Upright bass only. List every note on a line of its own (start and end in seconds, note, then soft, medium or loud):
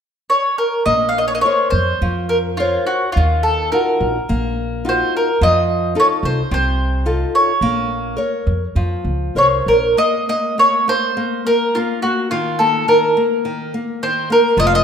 0.86 1.43 A#1 medium
1.72 1.91 F2 medium
2.01 2.76 F2 medium
3.16 3.70 D#2 medium
4.00 4.19 A#1 medium
4.30 5.02 A#1 medium
5.41 5.94 F2 medium
6.23 6.41 C2 medium
6.51 7.23 C2 medium
7.61 8.16 A#1 medium
8.47 8.66 F2 medium
8.75 8.95 F2 medium
9.05 9.32 C#2 medium
9.35 9.63 C2 medium
9.66 9.94 A#1 medium
14.57 14.84 F1 medium